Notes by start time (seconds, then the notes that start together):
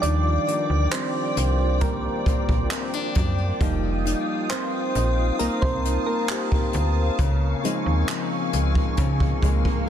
Already playing: F3 G3 D4 F4 D5 G5 D6
0.02 D#2 D#3 D4 D5, closed hi-hat
0.47 A#3, closed hi-hat
0.70 D2
0.91 G3 C4 C5, clap
1.37 C2 A#3, closed hi-hat
1.81 G3 A#3 A#4, kick, closed hi-hat
2.26 A#1 A#3, kick, closed hi-hat
2.49 A#1, kick
2.71 C4, clap, closed hi-hat
2.94 D4
3.15 F#2, kick, closed hi-hat
3.60 F1 F3 G3 A#3 D#4 F5 D#6, kick, closed hi-hat
4.06 D#4, closed hi-hat
4.49 A#3 C4 C5, clap, closed hi-hat
4.95 A#1 D#4, closed hi-hat
5.39 C2 A#3 A#4 A5, closed hi-hat
5.62 C2 C4 C5, kick
5.85 D#4, closed hi-hat
6.06 A#3 A#4
6.29 G4, clap, closed hi-hat
6.52 kick
6.73 D2 A#3, closed hi-hat
7.19 C#2 C#3 C4 G#5 C#6, kick, closed hi-hat, swell
7.64 F3 G#3 C4 D#4, closed hi-hat
7.86 D#2
8.07 F3, clap, closed hi-hat
8.53 C#2 G#3, closed hi-hat
8.75 kick
8.97 C#3 F3, kick, closed hi-hat
9.20 kick
9.43 C#2 G#3, kick, closed hi-hat
9.65 kick